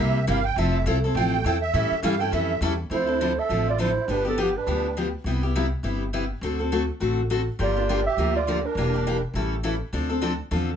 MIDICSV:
0, 0, Header, 1, 6, 480
1, 0, Start_track
1, 0, Key_signature, -1, "minor"
1, 0, Tempo, 292113
1, 942, Time_signature, 4, 2, 24, 8
1, 17686, End_track
2, 0, Start_track
2, 0, Title_t, "Clarinet"
2, 0, Program_c, 0, 71
2, 4814, Note_on_c, 0, 72, 91
2, 5574, Note_on_c, 0, 76, 95
2, 5599, Note_off_c, 0, 72, 0
2, 6038, Note_off_c, 0, 76, 0
2, 6074, Note_on_c, 0, 74, 95
2, 6237, Note_off_c, 0, 74, 0
2, 6257, Note_on_c, 0, 72, 87
2, 6759, Note_on_c, 0, 71, 85
2, 6784, Note_off_c, 0, 72, 0
2, 7011, Note_off_c, 0, 71, 0
2, 7040, Note_on_c, 0, 69, 75
2, 7201, Note_off_c, 0, 69, 0
2, 7246, Note_on_c, 0, 67, 76
2, 7513, Note_on_c, 0, 71, 73
2, 7538, Note_off_c, 0, 67, 0
2, 8171, Note_off_c, 0, 71, 0
2, 12530, Note_on_c, 0, 74, 95
2, 13209, Note_off_c, 0, 74, 0
2, 13255, Note_on_c, 0, 76, 98
2, 13690, Note_off_c, 0, 76, 0
2, 13741, Note_on_c, 0, 74, 92
2, 14229, Note_on_c, 0, 70, 79
2, 14253, Note_off_c, 0, 74, 0
2, 15169, Note_off_c, 0, 70, 0
2, 17686, End_track
3, 0, Start_track
3, 0, Title_t, "Accordion"
3, 0, Program_c, 1, 21
3, 0, Note_on_c, 1, 76, 96
3, 413, Note_off_c, 1, 76, 0
3, 471, Note_on_c, 1, 77, 91
3, 737, Note_off_c, 1, 77, 0
3, 738, Note_on_c, 1, 79, 121
3, 935, Note_off_c, 1, 79, 0
3, 948, Note_on_c, 1, 76, 80
3, 1391, Note_off_c, 1, 76, 0
3, 1902, Note_on_c, 1, 79, 113
3, 2606, Note_off_c, 1, 79, 0
3, 2662, Note_on_c, 1, 76, 109
3, 3293, Note_off_c, 1, 76, 0
3, 3338, Note_on_c, 1, 77, 93
3, 3607, Note_on_c, 1, 79, 111
3, 3609, Note_off_c, 1, 77, 0
3, 3808, Note_off_c, 1, 79, 0
3, 3823, Note_on_c, 1, 76, 90
3, 4268, Note_off_c, 1, 76, 0
3, 4782, Note_on_c, 1, 64, 77
3, 5488, Note_off_c, 1, 64, 0
3, 5541, Note_on_c, 1, 69, 80
3, 6021, Note_off_c, 1, 69, 0
3, 6030, Note_on_c, 1, 65, 74
3, 6213, Note_off_c, 1, 65, 0
3, 6233, Note_on_c, 1, 64, 74
3, 6675, Note_off_c, 1, 64, 0
3, 6727, Note_on_c, 1, 62, 70
3, 6995, Note_off_c, 1, 62, 0
3, 7008, Note_on_c, 1, 60, 68
3, 7184, Note_off_c, 1, 60, 0
3, 7210, Note_on_c, 1, 59, 63
3, 7458, Note_off_c, 1, 59, 0
3, 7491, Note_on_c, 1, 62, 68
3, 8160, Note_off_c, 1, 62, 0
3, 12491, Note_on_c, 1, 65, 76
3, 13188, Note_off_c, 1, 65, 0
3, 13247, Note_on_c, 1, 67, 83
3, 13686, Note_off_c, 1, 67, 0
3, 13713, Note_on_c, 1, 65, 76
3, 14158, Note_off_c, 1, 65, 0
3, 14201, Note_on_c, 1, 62, 66
3, 15155, Note_off_c, 1, 62, 0
3, 17686, End_track
4, 0, Start_track
4, 0, Title_t, "Steel-string acoustic guitar"
4, 0, Program_c, 2, 25
4, 0, Note_on_c, 2, 48, 76
4, 0, Note_on_c, 2, 55, 81
4, 0, Note_on_c, 2, 58, 71
4, 0, Note_on_c, 2, 64, 76
4, 0, Note_on_c, 2, 67, 90
4, 287, Note_off_c, 2, 55, 0
4, 288, Note_off_c, 2, 48, 0
4, 289, Note_off_c, 2, 58, 0
4, 291, Note_off_c, 2, 64, 0
4, 296, Note_off_c, 2, 67, 0
4, 448, Note_on_c, 2, 48, 89
4, 451, Note_on_c, 2, 55, 99
4, 461, Note_on_c, 2, 64, 91
4, 462, Note_on_c, 2, 58, 97
4, 466, Note_on_c, 2, 67, 95
4, 627, Note_off_c, 2, 48, 0
4, 629, Note_off_c, 2, 55, 0
4, 634, Note_off_c, 2, 58, 0
4, 634, Note_off_c, 2, 64, 0
4, 636, Note_off_c, 2, 67, 0
4, 945, Note_on_c, 2, 53, 82
4, 953, Note_on_c, 2, 60, 80
4, 958, Note_on_c, 2, 64, 90
4, 962, Note_on_c, 2, 69, 89
4, 1255, Note_off_c, 2, 53, 0
4, 1260, Note_off_c, 2, 60, 0
4, 1262, Note_off_c, 2, 64, 0
4, 1264, Note_off_c, 2, 69, 0
4, 1414, Note_on_c, 2, 53, 106
4, 1426, Note_on_c, 2, 60, 109
4, 1431, Note_on_c, 2, 69, 113
4, 1434, Note_on_c, 2, 64, 113
4, 1590, Note_off_c, 2, 53, 0
4, 1596, Note_off_c, 2, 60, 0
4, 1598, Note_off_c, 2, 69, 0
4, 1600, Note_off_c, 2, 64, 0
4, 1708, Note_on_c, 2, 69, 65
4, 1725, Note_on_c, 2, 64, 54
4, 1737, Note_on_c, 2, 60, 45
4, 1897, Note_off_c, 2, 69, 0
4, 1906, Note_off_c, 2, 60, 0
4, 1906, Note_off_c, 2, 64, 0
4, 1923, Note_on_c, 2, 53, 75
4, 1923, Note_on_c, 2, 64, 85
4, 1926, Note_on_c, 2, 60, 83
4, 1930, Note_on_c, 2, 69, 91
4, 2224, Note_off_c, 2, 53, 0
4, 2224, Note_off_c, 2, 64, 0
4, 2226, Note_off_c, 2, 60, 0
4, 2228, Note_off_c, 2, 69, 0
4, 2394, Note_on_c, 2, 53, 99
4, 2396, Note_on_c, 2, 64, 99
4, 2398, Note_on_c, 2, 60, 88
4, 2409, Note_on_c, 2, 69, 104
4, 2559, Note_off_c, 2, 53, 0
4, 2560, Note_off_c, 2, 64, 0
4, 2561, Note_off_c, 2, 60, 0
4, 2567, Note_off_c, 2, 69, 0
4, 2860, Note_on_c, 2, 52, 83
4, 2865, Note_on_c, 2, 55, 75
4, 2868, Note_on_c, 2, 61, 87
4, 2873, Note_on_c, 2, 64, 77
4, 2875, Note_on_c, 2, 69, 80
4, 3172, Note_off_c, 2, 52, 0
4, 3174, Note_off_c, 2, 55, 0
4, 3176, Note_off_c, 2, 61, 0
4, 3178, Note_off_c, 2, 64, 0
4, 3180, Note_off_c, 2, 69, 0
4, 3338, Note_on_c, 2, 52, 101
4, 3342, Note_on_c, 2, 61, 98
4, 3344, Note_on_c, 2, 55, 109
4, 3348, Note_on_c, 2, 64, 100
4, 3351, Note_on_c, 2, 69, 110
4, 3511, Note_off_c, 2, 52, 0
4, 3513, Note_off_c, 2, 61, 0
4, 3514, Note_off_c, 2, 55, 0
4, 3516, Note_off_c, 2, 64, 0
4, 3517, Note_off_c, 2, 69, 0
4, 3616, Note_on_c, 2, 69, 70
4, 3633, Note_on_c, 2, 64, 57
4, 3648, Note_on_c, 2, 61, 54
4, 3809, Note_off_c, 2, 64, 0
4, 3810, Note_off_c, 2, 69, 0
4, 3811, Note_off_c, 2, 61, 0
4, 3823, Note_on_c, 2, 55, 74
4, 3825, Note_on_c, 2, 52, 82
4, 3829, Note_on_c, 2, 64, 75
4, 3831, Note_on_c, 2, 61, 82
4, 3841, Note_on_c, 2, 69, 85
4, 4134, Note_off_c, 2, 55, 0
4, 4135, Note_off_c, 2, 52, 0
4, 4137, Note_off_c, 2, 64, 0
4, 4138, Note_off_c, 2, 61, 0
4, 4143, Note_off_c, 2, 69, 0
4, 4300, Note_on_c, 2, 52, 97
4, 4306, Note_on_c, 2, 55, 94
4, 4308, Note_on_c, 2, 61, 101
4, 4313, Note_on_c, 2, 69, 101
4, 4314, Note_on_c, 2, 64, 108
4, 4472, Note_off_c, 2, 52, 0
4, 4475, Note_off_c, 2, 55, 0
4, 4476, Note_off_c, 2, 61, 0
4, 4479, Note_off_c, 2, 64, 0
4, 4479, Note_off_c, 2, 69, 0
4, 4779, Note_on_c, 2, 50, 62
4, 4784, Note_on_c, 2, 60, 69
4, 4786, Note_on_c, 2, 53, 66
4, 4788, Note_on_c, 2, 62, 67
4, 4793, Note_on_c, 2, 69, 70
4, 5029, Note_off_c, 2, 69, 0
4, 5047, Note_off_c, 2, 50, 0
4, 5047, Note_off_c, 2, 62, 0
4, 5049, Note_on_c, 2, 69, 56
4, 5050, Note_off_c, 2, 60, 0
4, 5051, Note_off_c, 2, 53, 0
4, 5067, Note_on_c, 2, 62, 51
4, 5071, Note_on_c, 2, 60, 44
4, 5247, Note_off_c, 2, 69, 0
4, 5252, Note_off_c, 2, 60, 0
4, 5256, Note_off_c, 2, 62, 0
4, 5272, Note_on_c, 2, 50, 88
4, 5272, Note_on_c, 2, 60, 81
4, 5274, Note_on_c, 2, 53, 83
4, 5277, Note_on_c, 2, 62, 83
4, 5282, Note_on_c, 2, 69, 97
4, 5438, Note_off_c, 2, 60, 0
4, 5439, Note_off_c, 2, 50, 0
4, 5440, Note_off_c, 2, 53, 0
4, 5441, Note_off_c, 2, 62, 0
4, 5443, Note_off_c, 2, 69, 0
4, 5751, Note_on_c, 2, 53, 69
4, 5752, Note_on_c, 2, 50, 55
4, 5756, Note_on_c, 2, 60, 69
4, 5761, Note_on_c, 2, 62, 72
4, 5762, Note_on_c, 2, 69, 73
4, 6059, Note_off_c, 2, 53, 0
4, 6060, Note_off_c, 2, 50, 0
4, 6062, Note_off_c, 2, 60, 0
4, 6064, Note_off_c, 2, 62, 0
4, 6064, Note_off_c, 2, 69, 0
4, 6218, Note_on_c, 2, 50, 77
4, 6229, Note_on_c, 2, 53, 74
4, 6229, Note_on_c, 2, 60, 72
4, 6239, Note_on_c, 2, 62, 84
4, 6243, Note_on_c, 2, 69, 86
4, 6392, Note_off_c, 2, 50, 0
4, 6398, Note_off_c, 2, 53, 0
4, 6398, Note_off_c, 2, 60, 0
4, 6403, Note_off_c, 2, 62, 0
4, 6405, Note_off_c, 2, 69, 0
4, 6717, Note_on_c, 2, 50, 61
4, 6718, Note_on_c, 2, 53, 63
4, 6722, Note_on_c, 2, 59, 63
4, 6726, Note_on_c, 2, 62, 71
4, 6732, Note_on_c, 2, 67, 66
4, 6962, Note_off_c, 2, 67, 0
4, 6978, Note_off_c, 2, 50, 0
4, 6979, Note_off_c, 2, 53, 0
4, 6981, Note_off_c, 2, 59, 0
4, 6982, Note_on_c, 2, 67, 58
4, 6983, Note_off_c, 2, 62, 0
4, 7008, Note_on_c, 2, 62, 51
4, 7017, Note_on_c, 2, 59, 44
4, 7173, Note_off_c, 2, 59, 0
4, 7176, Note_off_c, 2, 67, 0
4, 7183, Note_off_c, 2, 62, 0
4, 7191, Note_on_c, 2, 50, 78
4, 7192, Note_on_c, 2, 59, 94
4, 7193, Note_on_c, 2, 53, 88
4, 7203, Note_on_c, 2, 62, 89
4, 7203, Note_on_c, 2, 67, 94
4, 7360, Note_off_c, 2, 50, 0
4, 7361, Note_off_c, 2, 59, 0
4, 7362, Note_off_c, 2, 53, 0
4, 7366, Note_off_c, 2, 62, 0
4, 7366, Note_off_c, 2, 67, 0
4, 7678, Note_on_c, 2, 50, 64
4, 7678, Note_on_c, 2, 53, 67
4, 7684, Note_on_c, 2, 62, 70
4, 7686, Note_on_c, 2, 59, 68
4, 7691, Note_on_c, 2, 67, 71
4, 7985, Note_off_c, 2, 50, 0
4, 7985, Note_off_c, 2, 53, 0
4, 7988, Note_off_c, 2, 62, 0
4, 7989, Note_off_c, 2, 59, 0
4, 7991, Note_off_c, 2, 67, 0
4, 8162, Note_on_c, 2, 50, 69
4, 8167, Note_on_c, 2, 53, 70
4, 8170, Note_on_c, 2, 62, 79
4, 8171, Note_on_c, 2, 59, 78
4, 8179, Note_on_c, 2, 67, 82
4, 8327, Note_off_c, 2, 50, 0
4, 8330, Note_off_c, 2, 53, 0
4, 8331, Note_off_c, 2, 62, 0
4, 8332, Note_off_c, 2, 59, 0
4, 8336, Note_off_c, 2, 67, 0
4, 8643, Note_on_c, 2, 48, 64
4, 8644, Note_on_c, 2, 55, 64
4, 8656, Note_on_c, 2, 59, 68
4, 8658, Note_on_c, 2, 64, 69
4, 8659, Note_on_c, 2, 67, 72
4, 8904, Note_off_c, 2, 48, 0
4, 8904, Note_off_c, 2, 55, 0
4, 8904, Note_off_c, 2, 67, 0
4, 8910, Note_off_c, 2, 59, 0
4, 8911, Note_off_c, 2, 64, 0
4, 8924, Note_on_c, 2, 67, 60
4, 8947, Note_on_c, 2, 64, 48
4, 8957, Note_on_c, 2, 59, 49
4, 9109, Note_off_c, 2, 67, 0
4, 9114, Note_off_c, 2, 59, 0
4, 9121, Note_off_c, 2, 64, 0
4, 9127, Note_on_c, 2, 48, 81
4, 9128, Note_on_c, 2, 55, 88
4, 9134, Note_on_c, 2, 59, 82
4, 9138, Note_on_c, 2, 64, 94
4, 9146, Note_on_c, 2, 67, 93
4, 9291, Note_off_c, 2, 48, 0
4, 9291, Note_off_c, 2, 55, 0
4, 9294, Note_off_c, 2, 59, 0
4, 9296, Note_off_c, 2, 64, 0
4, 9300, Note_off_c, 2, 67, 0
4, 9589, Note_on_c, 2, 48, 65
4, 9595, Note_on_c, 2, 55, 66
4, 9596, Note_on_c, 2, 59, 69
4, 9598, Note_on_c, 2, 64, 68
4, 9602, Note_on_c, 2, 67, 65
4, 9903, Note_off_c, 2, 48, 0
4, 9906, Note_off_c, 2, 55, 0
4, 9906, Note_off_c, 2, 59, 0
4, 9907, Note_off_c, 2, 64, 0
4, 9909, Note_off_c, 2, 67, 0
4, 10073, Note_on_c, 2, 48, 75
4, 10079, Note_on_c, 2, 55, 72
4, 10080, Note_on_c, 2, 59, 86
4, 10085, Note_on_c, 2, 64, 83
4, 10090, Note_on_c, 2, 67, 75
4, 10245, Note_off_c, 2, 48, 0
4, 10247, Note_off_c, 2, 55, 0
4, 10248, Note_off_c, 2, 59, 0
4, 10250, Note_off_c, 2, 64, 0
4, 10253, Note_off_c, 2, 67, 0
4, 10560, Note_on_c, 2, 50, 65
4, 10564, Note_on_c, 2, 60, 65
4, 10566, Note_on_c, 2, 57, 65
4, 10574, Note_on_c, 2, 66, 68
4, 10577, Note_on_c, 2, 69, 73
4, 10810, Note_off_c, 2, 69, 0
4, 10824, Note_off_c, 2, 50, 0
4, 10826, Note_off_c, 2, 60, 0
4, 10827, Note_off_c, 2, 57, 0
4, 10830, Note_on_c, 2, 69, 56
4, 10831, Note_off_c, 2, 66, 0
4, 10851, Note_on_c, 2, 66, 51
4, 10860, Note_on_c, 2, 60, 45
4, 11024, Note_off_c, 2, 60, 0
4, 11024, Note_off_c, 2, 69, 0
4, 11030, Note_off_c, 2, 66, 0
4, 11040, Note_on_c, 2, 50, 86
4, 11043, Note_on_c, 2, 57, 78
4, 11043, Note_on_c, 2, 60, 84
4, 11049, Note_on_c, 2, 69, 97
4, 11050, Note_on_c, 2, 66, 86
4, 11209, Note_off_c, 2, 50, 0
4, 11210, Note_off_c, 2, 57, 0
4, 11210, Note_off_c, 2, 60, 0
4, 11213, Note_off_c, 2, 69, 0
4, 11214, Note_off_c, 2, 66, 0
4, 11511, Note_on_c, 2, 50, 63
4, 11518, Note_on_c, 2, 57, 58
4, 11522, Note_on_c, 2, 66, 75
4, 11527, Note_on_c, 2, 60, 62
4, 11527, Note_on_c, 2, 69, 73
4, 11824, Note_off_c, 2, 50, 0
4, 11828, Note_off_c, 2, 57, 0
4, 11830, Note_off_c, 2, 66, 0
4, 11833, Note_off_c, 2, 60, 0
4, 11833, Note_off_c, 2, 69, 0
4, 11995, Note_on_c, 2, 57, 74
4, 11996, Note_on_c, 2, 50, 73
4, 12002, Note_on_c, 2, 60, 82
4, 12005, Note_on_c, 2, 66, 83
4, 12010, Note_on_c, 2, 69, 90
4, 12167, Note_off_c, 2, 50, 0
4, 12167, Note_off_c, 2, 57, 0
4, 12170, Note_off_c, 2, 60, 0
4, 12171, Note_off_c, 2, 66, 0
4, 12174, Note_off_c, 2, 69, 0
4, 12469, Note_on_c, 2, 53, 70
4, 12470, Note_on_c, 2, 50, 67
4, 12478, Note_on_c, 2, 62, 66
4, 12480, Note_on_c, 2, 58, 65
4, 12486, Note_on_c, 2, 67, 75
4, 12738, Note_off_c, 2, 67, 0
4, 12739, Note_off_c, 2, 50, 0
4, 12739, Note_off_c, 2, 53, 0
4, 12743, Note_off_c, 2, 62, 0
4, 12744, Note_off_c, 2, 58, 0
4, 12758, Note_on_c, 2, 67, 58
4, 12777, Note_on_c, 2, 62, 54
4, 12782, Note_on_c, 2, 58, 43
4, 12948, Note_off_c, 2, 67, 0
4, 12949, Note_off_c, 2, 58, 0
4, 12958, Note_off_c, 2, 62, 0
4, 12966, Note_on_c, 2, 50, 84
4, 12969, Note_on_c, 2, 53, 87
4, 12969, Note_on_c, 2, 58, 87
4, 12978, Note_on_c, 2, 62, 88
4, 12985, Note_on_c, 2, 67, 90
4, 13132, Note_off_c, 2, 50, 0
4, 13133, Note_off_c, 2, 53, 0
4, 13133, Note_off_c, 2, 58, 0
4, 13138, Note_off_c, 2, 62, 0
4, 13141, Note_off_c, 2, 67, 0
4, 13436, Note_on_c, 2, 50, 60
4, 13444, Note_on_c, 2, 53, 71
4, 13452, Note_on_c, 2, 62, 73
4, 13453, Note_on_c, 2, 58, 74
4, 13458, Note_on_c, 2, 67, 73
4, 13747, Note_off_c, 2, 50, 0
4, 13751, Note_off_c, 2, 53, 0
4, 13755, Note_off_c, 2, 58, 0
4, 13755, Note_off_c, 2, 62, 0
4, 13758, Note_off_c, 2, 67, 0
4, 13922, Note_on_c, 2, 50, 69
4, 13935, Note_on_c, 2, 58, 73
4, 13936, Note_on_c, 2, 53, 82
4, 13940, Note_on_c, 2, 62, 93
4, 13946, Note_on_c, 2, 67, 91
4, 14090, Note_off_c, 2, 50, 0
4, 14096, Note_off_c, 2, 53, 0
4, 14096, Note_off_c, 2, 58, 0
4, 14098, Note_off_c, 2, 62, 0
4, 14101, Note_off_c, 2, 67, 0
4, 14413, Note_on_c, 2, 52, 63
4, 14419, Note_on_c, 2, 58, 71
4, 14425, Note_on_c, 2, 62, 73
4, 14434, Note_on_c, 2, 67, 74
4, 14665, Note_off_c, 2, 67, 0
4, 14670, Note_off_c, 2, 52, 0
4, 14673, Note_off_c, 2, 58, 0
4, 14676, Note_off_c, 2, 62, 0
4, 14684, Note_on_c, 2, 67, 53
4, 14698, Note_on_c, 2, 62, 50
4, 14717, Note_on_c, 2, 58, 52
4, 14870, Note_off_c, 2, 67, 0
4, 14877, Note_off_c, 2, 62, 0
4, 14881, Note_off_c, 2, 58, 0
4, 14900, Note_on_c, 2, 52, 86
4, 14901, Note_on_c, 2, 58, 86
4, 14908, Note_on_c, 2, 62, 92
4, 14911, Note_on_c, 2, 67, 90
4, 15058, Note_off_c, 2, 52, 0
4, 15058, Note_off_c, 2, 58, 0
4, 15062, Note_off_c, 2, 62, 0
4, 15063, Note_off_c, 2, 67, 0
4, 15367, Note_on_c, 2, 55, 71
4, 15369, Note_on_c, 2, 52, 69
4, 15375, Note_on_c, 2, 64, 64
4, 15376, Note_on_c, 2, 61, 70
4, 15378, Note_on_c, 2, 69, 75
4, 15671, Note_off_c, 2, 55, 0
4, 15672, Note_off_c, 2, 52, 0
4, 15674, Note_off_c, 2, 64, 0
4, 15675, Note_off_c, 2, 61, 0
4, 15676, Note_off_c, 2, 69, 0
4, 15828, Note_on_c, 2, 55, 72
4, 15834, Note_on_c, 2, 52, 83
4, 15838, Note_on_c, 2, 61, 87
4, 15844, Note_on_c, 2, 64, 86
4, 15851, Note_on_c, 2, 69, 91
4, 16001, Note_off_c, 2, 55, 0
4, 16004, Note_off_c, 2, 52, 0
4, 16006, Note_off_c, 2, 61, 0
4, 16009, Note_off_c, 2, 64, 0
4, 16012, Note_off_c, 2, 69, 0
4, 16313, Note_on_c, 2, 53, 70
4, 16314, Note_on_c, 2, 50, 60
4, 16320, Note_on_c, 2, 60, 71
4, 16327, Note_on_c, 2, 62, 68
4, 16332, Note_on_c, 2, 69, 75
4, 16567, Note_off_c, 2, 69, 0
4, 16577, Note_off_c, 2, 53, 0
4, 16578, Note_off_c, 2, 50, 0
4, 16579, Note_off_c, 2, 62, 0
4, 16581, Note_off_c, 2, 60, 0
4, 16587, Note_on_c, 2, 69, 56
4, 16599, Note_on_c, 2, 62, 48
4, 16613, Note_on_c, 2, 60, 47
4, 16771, Note_off_c, 2, 62, 0
4, 16775, Note_off_c, 2, 60, 0
4, 16779, Note_off_c, 2, 69, 0
4, 16784, Note_on_c, 2, 53, 85
4, 16786, Note_on_c, 2, 50, 83
4, 16791, Note_on_c, 2, 62, 101
4, 16795, Note_on_c, 2, 60, 95
4, 16799, Note_on_c, 2, 69, 105
4, 16957, Note_off_c, 2, 53, 0
4, 16959, Note_off_c, 2, 50, 0
4, 16961, Note_off_c, 2, 62, 0
4, 16963, Note_off_c, 2, 60, 0
4, 16965, Note_off_c, 2, 69, 0
4, 17269, Note_on_c, 2, 50, 68
4, 17271, Note_on_c, 2, 60, 67
4, 17276, Note_on_c, 2, 53, 76
4, 17280, Note_on_c, 2, 62, 75
4, 17280, Note_on_c, 2, 69, 77
4, 17579, Note_off_c, 2, 50, 0
4, 17580, Note_off_c, 2, 60, 0
4, 17582, Note_off_c, 2, 53, 0
4, 17584, Note_off_c, 2, 62, 0
4, 17584, Note_off_c, 2, 69, 0
4, 17686, End_track
5, 0, Start_track
5, 0, Title_t, "Upright bass"
5, 0, Program_c, 3, 32
5, 0, Note_on_c, 3, 36, 93
5, 441, Note_off_c, 3, 36, 0
5, 452, Note_on_c, 3, 31, 94
5, 911, Note_off_c, 3, 31, 0
5, 921, Note_on_c, 3, 29, 98
5, 1396, Note_off_c, 3, 29, 0
5, 1409, Note_on_c, 3, 36, 98
5, 1875, Note_off_c, 3, 36, 0
5, 1885, Note_on_c, 3, 33, 100
5, 2358, Note_off_c, 3, 33, 0
5, 2369, Note_on_c, 3, 40, 98
5, 2840, Note_off_c, 3, 40, 0
5, 2850, Note_on_c, 3, 45, 93
5, 3113, Note_off_c, 3, 45, 0
5, 3327, Note_on_c, 3, 43, 101
5, 3798, Note_off_c, 3, 43, 0
5, 3813, Note_on_c, 3, 41, 96
5, 4274, Note_off_c, 3, 41, 0
5, 4284, Note_on_c, 3, 40, 93
5, 4751, Note_off_c, 3, 40, 0
5, 4761, Note_on_c, 3, 38, 81
5, 5537, Note_off_c, 3, 38, 0
5, 5738, Note_on_c, 3, 33, 80
5, 6509, Note_off_c, 3, 33, 0
5, 6701, Note_on_c, 3, 31, 85
5, 7472, Note_off_c, 3, 31, 0
5, 7666, Note_on_c, 3, 38, 83
5, 8436, Note_off_c, 3, 38, 0
5, 8613, Note_on_c, 3, 36, 80
5, 9388, Note_off_c, 3, 36, 0
5, 9580, Note_on_c, 3, 31, 83
5, 10353, Note_off_c, 3, 31, 0
5, 10538, Note_on_c, 3, 38, 86
5, 11313, Note_off_c, 3, 38, 0
5, 11505, Note_on_c, 3, 33, 80
5, 12277, Note_off_c, 3, 33, 0
5, 12469, Note_on_c, 3, 31, 82
5, 13238, Note_off_c, 3, 31, 0
5, 13421, Note_on_c, 3, 38, 80
5, 14193, Note_off_c, 3, 38, 0
5, 14377, Note_on_c, 3, 28, 85
5, 15150, Note_off_c, 3, 28, 0
5, 15340, Note_on_c, 3, 33, 87
5, 16111, Note_off_c, 3, 33, 0
5, 16310, Note_on_c, 3, 38, 86
5, 17075, Note_off_c, 3, 38, 0
5, 17269, Note_on_c, 3, 40, 85
5, 17675, Note_off_c, 3, 40, 0
5, 17686, End_track
6, 0, Start_track
6, 0, Title_t, "Muted upright bass strokes"
6, 3133, Note_on_c, 9, 29, 44
6, 3298, Note_off_c, 9, 29, 0
6, 17686, End_track
0, 0, End_of_file